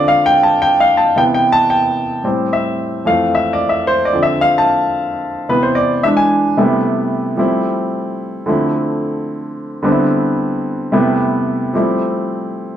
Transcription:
Already playing: D3 F3 C4 D5
0.08 F5
0.26 G5
0.43 A5
0.62 G5
0.80 F5
0.97 A5
1.16 C3 E3 B3 G5
1.34 G5
1.52 A5
1.70 G5
2.24 A2 G3 C4
2.53 E5
3.05 F2 E3 A3 F5
3.35 E5
3.53 D5
3.69 E5
3.87 C5
4.05 D5
4.13 D3 F3 C4
4.23 E5
4.41 F5
4.58 A5
5.49 C3 E3 B3 B4
5.63 C5
5.75 D5
6.03 E3 G#3 D4 E5
6.17 G#5
6.57 C3 G3 A3 B3 E4
7.36 F3 G3 A3 C4 E4
8.46 D3 F3 A3 C4 E4
9.83 D3 G3 B3 C4 D4
9.92 E4
10.92 C3 G3 A3 B3 E4
11.74 F3 G3 A3 C4 E4

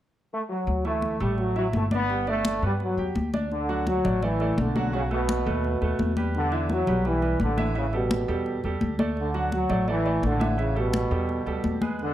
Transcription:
0.32 A3
0.49 F#3
0.67 D2, high conga
0.85 E3 A3 E4, high conga
1.02 high conga
1.20 A1 G3 A3 A4, high conga
1.38 F#3, high conga
1.56 F#3 E4 E5, high conga
1.73 G1 A3, high conga
1.91 B3 D4 D5, high conga
2.09 G3 G4, high conga
2.27 A3 D4 D5, high conga
2.45 high conga
2.62 G2 G3 B3 B4
2.80 F#3, high conga
2.97 E2 G4 G5, high conga
3.15 D2, high conga
3.34 D4 D5, high conga
3.52 D3, high conga
3.69 F#3 F#4 F#5, high conga
3.87 F#3, high conga
4.04 A1 A3 A4 D5, high conga, low conga
4.22 E3 A3 A4 D5, high conga, low conga
4.40 A3 A4 D5, high conga
4.58 B1 D3, high conga
4.76 F#3 F#4 F#5, high conga
4.93 C#3 F#3 F#4 F#5, high conga
5.11 B2 A3 A4 B4, high conga
5.29 high conga
5.46 D#2 A3 A4 B4
5.64 high conga
5.81 D#2 A3 A4 B4, high conga
5.99 E2, high conga
6.17 G3 G4 B4, high conga
6.35 D3, high conga
6.52 E3 E4 E5, high conga
6.69 F#3, high conga
6.87 B1 G3 G4 B4, high conga, low conga
7.05 E3 G3 G4 B4, high conga
7.22 G3 G4 B4, high conga
7.40 A1 D3, high conga
7.57 E3 E4 E5, high conga
7.75 C#3 E3 E4 E5, high conga
7.93 B2 G3 G4 A4, high conga
8.11 high conga
8.28 E2 G3 G4 A4
8.46 high conga
8.64 E2 G3 G4 A4, high conga
8.81 D2, high conga
8.99 A3 A4 D5, high conga
9.17 D3, high conga
9.34 F#3 F#4 F#5, high conga
9.52 F#3, high conga
9.69 A1 A3 A4 D5, high conga, low conga
9.88 E3 A3 A4 D5, high conga
10.05 A3 A4 D5, high conga
10.23 A1 D3, high conga
10.40 E3 E4 E5, high conga
10.58 C#3 E3 E4 E5, high conga
10.75 B2 G3 G4 A4, high conga
10.94 high conga
11.11 E2 G3 G4 A4
11.29 high conga
11.46 D2 G3 G4 A4, high conga
11.64 E2, high conga
11.81 G#3 G#4 B4, high conga
11.99 D3, high conga

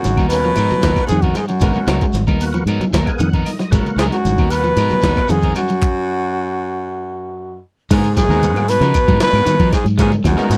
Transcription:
Already playing: F#2 F#4
0.04 G#1, snare, closed hi-hat, high conga, shekere
0.17 D#2 B3 D#4 A#4, kick, high conga, claves, shekere
0.28 B2 A#3 B3 B4, open hi-hat, shekere
0.33 C#4
0.44 F3, closed hi-hat, shekere
0.56 G#2 F#3 D#4 A#4, muted clean electric guitar stroke, snare, closed hi-hat, claves, shekere
0.70 F#3, muted fingered electric bass stroke, high conga, low conga, shekere
0.82 D#2 F#3 B3 D#4 A#4, kick, snare, closed hi-hat, high conga, shekere
0.96 A#3 B3 F#4, kick, snare, claves, shekere
1.06 G#2 G#4, closed hi-hat, shekere
1.10 F2 D#3, high conga
1.21 F#2 B3 D#4 F#4 A#4, kick, closed hi-hat, shekere
1.33 G#2, snare, closed hi-hat, shekere
1.37 G#4, high conga, claves
1.48 F#2 F#3 F#4, closed hi-hat, shekere
1.60 G#1 F#3 G#3 A#3 B3 D#4 F#4 A#4, kick, snare, closed hi-hat, low conga, shekere
1.74 muted fingered electric bass stroke, high conga, shekere
1.87 C#2 F#3 B3 D#4 A#4, snare, closed hi-hat, high conga, claves, shekere
2.01 G#3, kick, closed hi-hat, shekere
2.13 G#1, snare, closed hi-hat, high conga, shekere
2.27 D#2 B3 D#4 A#4, kick, high conga, claves, shekere
2.40 A#3 B3 F#4, open hi-hat, shekere
2.54 F3, closed hi-hat, shekere
2.66 G#2 F#3 B3 D#4 A#4, closed hi-hat, claves, shekere
2.79 F#3, muted fingered electric bass stroke, closed hi-hat, high conga, low conga, shekere
2.93 D#2 F#3 B3 D#4 A#4, kick, snare, closed hi-hat, high conga, shekere
3.06 A#3 B3 G#4, kick, closed hi-hat, claves, shekere
3.19 F2 D#3 F#5, closed hi-hat, high conga, shekere
3.33 B3 D#4 A#4, kick, closed hi-hat, shekere
3.45 D#5, open hi-hat, high conga, claves, shekere
3.59 F#3, snare, shekere
3.71 G#1 F#3 G#3 A#3 B3 F#4 A#4, muted clean electric guitar stroke, kick, closed hi-hat, low conga, shekere
3.86 closed hi-hat, shekere
3.96 C#2 G#2 F#3 B3 D#4 G#4 A#4, muted clean electric guitar stroke, snare, closed hi-hat, claves, shekere
4.00 high conga
4.11 F#2 G#3 F#4, snare, closed hi-hat, shekere
4.25 G#1, closed hi-hat, high conga, shekere
4.38 D#2 B3 D#4 A#4, kick, claves, shekere
4.50 B2 A#3 B3 F#4 B4, open hi-hat, shekere
4.64 F3, closed hi-hat, shekere
4.76 G#2 B3 D#4 A#4, muted clean electric guitar stroke, snare, closed hi-hat, claves, shekere
4.90 F#3, muted fingered electric bass stroke, high conga, low conga, shekere
5.02 D#2 F#3 B3 D#4, muted clean electric guitar stroke, kick, snare, closed hi-hat, high conga, shekere
5.15 A#3 B3 F#4, kick, snare, claves, shekere
5.28 F2 G#2 D#3 G#4, snare, closed hi-hat, high conga, shekere
5.42 B3 D#4 A#4, kick, closed hi-hat, shekere
5.55 F#2 F#4, closed hi-hat, high conga, claves, shekere
5.68 F#3, closed hi-hat, shekere
5.82 kick, clap
7.90 G#2 F#3 G#3 A#3 B3 D#4 F#4 G#4 A#4, kick, closed hi-hat, crash, low conga, shekere
8.04 closed hi-hat, shekere
8.15 G#2 F#3 G#4, kick, snare, closed hi-hat, high conga, claves, shekere
8.29 D#2 G#3 A#3 B3 D#4 F#4 A#4, low conga, shekere
8.43 closed hi-hat, high conga, shekere
8.55 G#2, closed hi-hat, high conga, claves, shekere
8.68 B2 B4, open hi-hat, shekere
8.81 C#3 F3 B3 D#4 A#4, snare, closed hi-hat, shekere
8.94 kick, closed hi-hat, claves, shekere
9.08 G#2 F#3 B3 D#4 A#4, kick, closed hi-hat, high conga, low conga, shekere
9.20 B2 B4, snare, closed hi-hat, high conga, shekere
9.33 G#2 A#3 B3 F#4, snare, closed hi-hat, claves, shekere
9.46 D#3, muted fingered electric bass stroke, snare, closed hi-hat, high conga, shekere
9.60 F3 B3 D#4 A#4, kick, closed hi-hat, shekere
9.73 G#2 G#4, kick, snare, closed hi-hat, claves, shekere
9.84 G#2 F#3, closed hi-hat, shekere
9.98 G#2 F#3 G#3 A#3 B3 D#4 F4 G#4, muted clean electric guitar stroke, kick, snare, closed hi-hat, low conga, shekere
10.12 closed hi-hat, high conga, shekere
10.24 D#2 F#2 F#3 F#4, kick, snare, closed hi-hat, high conga, claves, shekere
10.36 G#3 A#3 B3 D#4 A#4, snare, shekere
10.50 G#2, snare, closed hi-hat, high conga, shekere

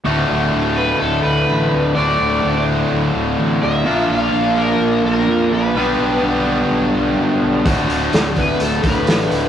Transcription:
0.05 D1 D2 A2 D3 A3 F#4
0.30 D1
0.54 D1
0.77 B3 B4
1.00 D1 A3 A4
1.23 D1 D4 B4
1.49 A1
1.73 D1
1.95 D1 D2 A2 D3 A3 D4 F#4 D5
2.20 D1
2.44 D1
2.92 D1
3.14 D1
3.38 A1
3.62 D1 A#4 E5
3.85 A#1 A#2 F3 A#3 D4 F4 A#4
4.10 A#1 F4 F5
4.33 A#1
4.58 A#3 A#4
4.80 A#1
5.04 A#1 A#3 A#4
5.28 F2
5.51 A#1 D4 B4
5.75 B1 G2 D3 G3 B3 D4 G4
5.99 B1
6.23 B1
6.71 B1
6.95 B1
7.17 F#2
7.42 B1
7.65 D1 D2 A2 D3 A3 F#4, kick, open hi-hat
7.90 D1, open hi-hat
8.13 D1, snare, open hi-hat
8.36 B3 B4, kick, open hi-hat
8.60 D1 A3 A4, open hi-hat
8.83 D1 D4 B4, kick, open hi-hat
9.07 A1, snare, open hi-hat
9.31 D1, open hi-hat

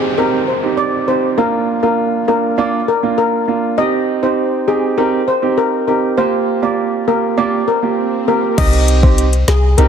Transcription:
Already playing: C4 D#4 G4, downlifter
0.18 C4 D#4 G4 A#4
0.48 C5
0.63 C4 D#4 G4
0.77 D5
1.08 C4 D#4 G4 C5
1.38 A#3 D4 F4 A#4
1.82 A#3 D4 F4 A#4
2.28 A#3 D4 F4 A#4
2.58 A#3 D4 F4 D5
2.88 A#4
3.03 A#3 D4 F4
3.18 A#4
3.48 A#3 D4 F4
3.78 C4 D#4 G4 D#5
4.23 C4 D#4 G4 C5
4.68 C4 D#4 G4 G#4
4.98 C4 D#4 G4 A#4
5.28 C5
5.42 C4 D#4 G4
5.58 A#4
5.87 C4 D#4 G4 A#4
6.17 A#3 F4 G4 C5, swell
6.62 A#3 F4 G4 D5
7.08 A#3 F4 G4 A#4
7.38 A#3 F4 G4 D5
7.68 A#4
7.83 A#3 F4 G4
8.28 A#3 F4 G4 A#4
8.58 C2 C4 D#4 G4 D#5, kick, closed hi-hat, crash
8.73 closed hi-hat
8.88 closed hi-hat
9.03 C4 D#4 G4 C5, kick
9.18 closed hi-hat
9.33 closed hi-hat
9.48 C2 G#4, snare, closed hi-hat
9.78 C2 C4 D#4 G4 A#4, closed hi-hat

